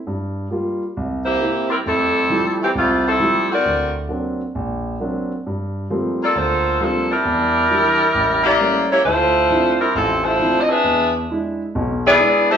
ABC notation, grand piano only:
X:1
M:4/4
L:1/8
Q:"Swing" 1/4=134
K:C
V:1 name="Grand piano"
G,,2 [G,_B,F] z C,,2 [B,CE] z | [K:F] [F,,A,]2 [F,G,A,E] z C,,2 [F,G,A,E] z | D,,2 [^F,^A,CD] z ^A,,,2 [F,A,CD] z | G,,2 [F,G,A,B,C] z D,,2 [F,G,A,B,C] z |
E,,2 [E,G,D] z A,,,2 [G,A,B,^C] z | D,,2 [F,CDE] z A,,,2 [F,CDE] z | E,,2 [^G,DE] z [=B,,,=B,,]2 [G,DE] z |]